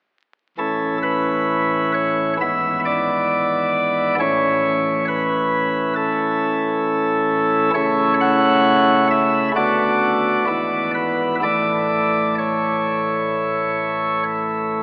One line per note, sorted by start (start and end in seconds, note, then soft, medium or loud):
0.58 2.37 A1 medium
0.58 2.37 A2 medium
0.58 2.37 E3 soft
0.58 2.37 C#4 soft
0.58 2.37 E4 soft
0.58 0.98 A4 medium
1.03 1.92 B4 medium
1.94 2.33 C#5 medium
2.40 4.15 G#1 soft
2.40 4.15 G#2 soft
2.40 4.15 E3 soft
2.40 4.15 B3 soft
2.40 4.15 E4 soft
2.40 2.79 E5 medium
2.85 4.15 D5 medium
4.19 7.71 A1 medium
4.19 7.70 A2 medium
4.19 7.70 E3 medium
4.19 7.70 C#4 soft
4.19 7.70 E4 soft
4.19 5.05 C#5 loud
5.08 5.93 B4 medium
5.96 7.70 A4 medium
7.74 9.51 C#3 medium
7.74 9.51 A3 medium
7.74 9.51 C#4 medium
7.74 9.51 E4 medium
7.74 8.14 C#5 loud
8.21 9.07 F#5 loud
9.11 9.49 E5 medium
9.55 10.45 D3 medium
9.55 10.45 A3 soft
9.55 10.45 B3 medium
9.55 10.45 F#4 medium
9.55 10.91 D5 medium
10.47 11.40 G#1 medium
10.47 11.40 G#2 medium
10.47 11.40 E3 medium
10.47 11.40 B3 soft
10.47 11.40 E4 medium
10.94 11.35 B4 medium
11.43 14.83 A1 medium
11.43 14.83 A2 medium
11.43 14.83 E3 soft
11.43 14.83 A3 soft
11.43 14.83 E4 soft
11.43 12.35 D5 medium
12.38 14.23 C#5 medium